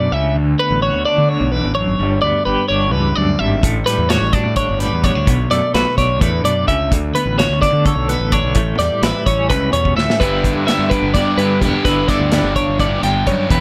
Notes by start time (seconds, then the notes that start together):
Already playing: B2 A3 D4 F#4 D5
0.12 C#2 C#3 E5
0.35 D2
0.59 B3 B4
0.70 A1
0.82 F#4 C#5
0.94 D2
1.05 D4 D5
1.18 D3
1.29 D2 C#5
1.41 B1
1.52 E2 B4
1.64 A1
1.75 F#2 C#5
1.88 G#1
1.99 G1 G2
2.22 D2 B3 D5
2.45 G1 G4 B4
2.68 G1 D4 C#5
2.92 C#2 E2 B4
3.16 D2 F#2 D5
3.39 G#1 G2 E5
3.62 A1 A2, kick, closed hi-hat
3.86 G3 B4, snare, closed hi-hat
3.98 E2
4.09 F#4 C#5, snare, closed hi-hat
4.22 A1
4.33 D4 D5, kick, closed hi-hat
4.46 A2
4.56 D4 C#5, kick, closed hi-hat
4.69 G1
4.79 G3 B4, snare, closed hi-hat
4.93 E2
5.03 B3 C#5, kick, closed hi-hat
5.15 D2 D4
5.26 B1 B2, kick, closed hi-hat
5.50 F#2 A3 D5, snare, closed hi-hat
5.74 B1 F#4 B4, snare, closed hi-hat
5.98 B1 D4 C#5, kick, snare, closed hi-hat
6.21 E2 A2 B4, kick, closed hi-hat
6.44 F#2 B2 D5, closed hi-hat
6.68 C#2 C#3 E5, kick, closed hi-hat
6.91 D2, kick, closed hi-hat
7.15 B3 B4, closed hi-hat
7.26 A1
7.38 F#4 C#5, snare, closed hi-hat
7.49 D2
7.62 D4 D5, kick, snare, closed hi-hat
7.73 D3
7.85 A4 C#5, kick, closed hi-hat
7.96 B1
8.09 B3 B4, snare, closed hi-hat
8.20 A1
8.32 D4 C#5, kick, closed hi-hat
8.43 B1
8.55 A1 A2, kick, closed hi-hat
8.79 E2 G3 D5, snare, closed hi-hat
9.02 A1 E4 B4, snare, closed hi-hat
9.26 A1 C#4 C#5, kick, closed hi-hat
9.50 C#2 C#3 B4, kick, snare, closed hi-hat
9.73 E2 B2 C#5, closed hi-hat
9.85 kick
9.97 D2 A2 E5, snare
10.10 snare
10.20 G1 G2 G3 B3 D4 E4 G4 B4, kick, closed hi-hat
10.43 D3, kick, closed hi-hat
10.56 G2
10.67 G3 B3 D4 E5, snare, closed hi-hat
10.71 G4
10.79 G2
10.90 D4 B4, kick, closed hi-hat
11.02 G1
11.14 G3 B3 D4 G4 D5, kick, snare, closed hi-hat
11.37 G2 D3 D4 G4 B4, closed hi-hat
11.42 B3
11.61 E1 G3 B3 D4 G4, kick, closed hi-hat
11.85 G1 G2 G3 B3 D4 E4 G4 B4, kick, closed hi-hat
12.08 D3 D5, kick, snare, closed hi-hat
12.20 D2
12.31 G3 B3 D4 G4, snare, closed hi-hat
12.44 G1
12.56 D4 C#5, kick, closed hi-hat
12.68 G1
12.78 A2 G3 B3 D4 G4 D5, kick, closed hi-hat
13.02 G1 G2 B3 D4 G4 G5, snare, closed hi-hat
13.27 F#2 G2 G3 B3 D4 G4 C#5, kick, closed hi-hat
13.50 E1 E2 E3 B3 E4 G4 B4, kick, closed hi-hat